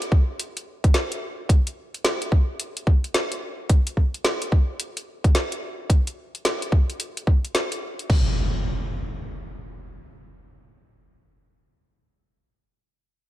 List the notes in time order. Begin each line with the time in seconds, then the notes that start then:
0.02 closed hi-hat
0.12 kick
0.39 closed hi-hat
0.57 closed hi-hat
0.84 kick, closed hi-hat
0.94 snare, closed hi-hat
1.12 closed hi-hat
1.49 kick, closed hi-hat
1.67 closed hi-hat
1.94 closed hi-hat
2.05 snare, closed hi-hat
2.22 closed hi-hat
2.32 kick
2.60 closed hi-hat
2.77 closed hi-hat
2.87 kick
3.04 closed hi-hat
3.14 snare, closed hi-hat
3.32 closed hi-hat
3.70 kick, closed hi-hat
3.87 closed hi-hat
3.97 kick
4.14 closed hi-hat
4.25 snare, closed hi-hat
4.42 closed hi-hat
4.52 kick
4.80 closed hi-hat
4.97 closed hi-hat
5.24 kick, closed hi-hat
5.35 snare, closed hi-hat
5.52 closed hi-hat
5.90 kick, closed hi-hat
6.07 closed hi-hat
6.35 closed hi-hat
6.45 snare, closed hi-hat
6.62 closed hi-hat
6.72 kick
6.90 closed hi-hat
7.00 closed hi-hat
7.17 closed hi-hat
7.27 kick
7.45 closed hi-hat
7.55 snare, closed hi-hat
7.72 closed hi-hat
7.99 closed hi-hat
8.10 kick, crash, impact